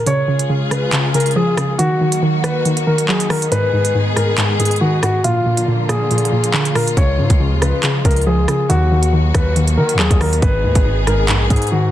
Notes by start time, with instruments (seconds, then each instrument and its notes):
0.06 synth pluck C#3, string section C#3 G#3 F4 G#4, grand piano C#5, closed hi-hat
0.28 synth pluck C#3
0.39 closed hi-hat
0.49 synth pluck C#3
0.71 synth pluck C#3, grand piano B4, cross-stick, closed hi-hat
0.92 synth pluck C#3, clap, closed hi-hat
1.14 synth pluck C#3, grand piano A#4, closed hi-hat
1.20 closed hi-hat
1.26 closed hi-hat
1.31 closed hi-hat
1.36 synth pluck F3, grand piano G#4
1.57 synth pluck C#3, cross-stick, closed hi-hat
1.78 string section D#3 F#3 A#3 F#4, synth pluck D#3, grand piano F#4, closed hi-hat
2.01 synth pluck D#3
2.12 closed hi-hat
2.22 synth pluck D#3
2.44 synth pluck D#3, grand piano B4, cross-stick, closed hi-hat
2.65 synth pluck D#3, closed hi-hat
2.77 closed hi-hat
2.87 synth pluck D#3, grand piano A#4
2.98 closed hi-hat
3.08 synth pluck F#3, grand piano G#4, clap
3.20 closed hi-hat
3.30 synth pluck D#3, grand piano A#4, cross-stick, open hi-hat
3.42 closed hi-hat
3.51 synth pluck G#2, string section G#3 B3 G#4, grand piano B4, closed hi-hat
3.73 synth pluck G#2
3.85 closed hi-hat
3.95 synth pluck G#2
4.16 synth pluck G#2, grand piano A#4, cross-stick, closed hi-hat
4.37 synth pluck G#2, clap, closed hi-hat
4.60 synth pluck G#2, grand piano G#4, closed hi-hat
4.65 closed hi-hat
4.71 closed hi-hat
4.76 closed hi-hat
4.81 synth pluck D#3, grand piano F#4
5.03 synth pluck G#2, grand piano F#4, cross-stick, closed hi-hat
5.24 synth pluck A#2, string section D3 F3 A#3 F4, grand piano F4, closed hi-hat
5.46 synth pluck A#2
5.57 closed hi-hat
5.68 synth pluck A#2
5.89 synth pluck A#2, grand piano G#4, cross-stick, closed hi-hat
6.11 synth pluck A#2, closed hi-hat
6.18 closed hi-hat
6.25 closed hi-hat
6.32 synth pluck A#2
6.44 closed hi-hat
6.54 synth pluck D3, clap
6.65 closed hi-hat
6.75 synth pluck A#2, grand piano A#4, cross-stick, open hi-hat
6.88 closed hi-hat
6.97 808-style bass C#2, synth pluck C#3, string section C#3 F3 G#3, grand piano C#5, kick, closed hi-hat
7.19 808-style bass G#2, synth pluck C#3
7.30 808-style bass C#2, kick, closed hi-hat
7.40 synth pluck C#3
7.52 808-style bass D#2
7.62 808-style bass C#2, synth pluck C#3, grand piano B4, cross-stick, closed hi-hat
7.83 synth pluck C#3, clap, closed hi-hat
8.05 808-style bass C#2, synth pluck C#3, grand piano A#4, kick, closed hi-hat
8.11 closed hi-hat
8.16 closed hi-hat
8.21 closed hi-hat
8.26 synth pluck F3, grand piano G#4
8.48 synth pluck C#3, grand piano G#4, cross-stick, closed hi-hat
8.69 808-style bass D#2, synth pluck D#3, string section D#3 F#3 A#3 F#4, grand piano F#4, closed hi-hat
8.91 synth pluck D#3
9.03 closed hi-hat
9.13 synth pluck D#3
9.34 808-style bass D#2, synth pluck D#3, grand piano B4, kick, cross-stick, closed hi-hat
9.56 synth pluck D#3, closed hi-hat
9.68 closed hi-hat
9.77 synth pluck D#3, 808-style bass D#3, grand piano A#4
9.89 closed hi-hat
9.94 808-style bass D#2
9.99 synth pluck F#3, grand piano G#4, clap
10.11 808-style bass D#2, kick, closed hi-hat
10.21 synth pluck D#3, grand piano A#4, cross-stick, open hi-hat
10.33 closed hi-hat
10.42 808-style bass G#1, synth pluck G#2, string section G#3 B3 G#4, grand piano B4, kick, closed hi-hat
10.64 808-style bass D#2, synth pluck G#2
10.75 808-style bass G#1, kick, closed hi-hat
10.86 synth pluck G#2
11.07 synth pluck G#2, grand piano A#4, cross-stick, closed hi-hat
11.28 808-style bass A#1, synth pluck G#2, clap, closed hi-hat
11.50 synth pluck G#2, 808-style bass G#2, grand piano G#4, kick, closed hi-hat
11.56 closed hi-hat
11.62 closed hi-hat
11.67 closed hi-hat
11.71 synth pluck D#3, grand piano F#4